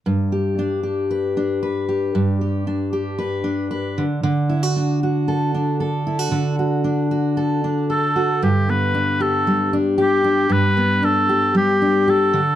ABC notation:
X:1
M:4/4
L:1/16
Q:1/4=115
K:G
V:1 name="Oboe"
z16 | z16 | z16 | z12 A4 |
G2 B4 A4 z2 G4 | B4 A4 G4 A4 |]
V:2 name="Steel-string acoustic guitar"
G,,2 G2 D2 G2 B2 D2 B2 G2 | G,,2 G2 D2 G2 B2 D2 B2 D,2 | D,2 E F D2 F2 A2 D2 A2 E F | D,2 F2 D2 F2 A2 D2 A2 F2 |
G,,2 B,2 D2 G2 G,2 D2 G2 D2 | G,,2 B,2 D2 G2 G,2 D2 G2 D,2 |]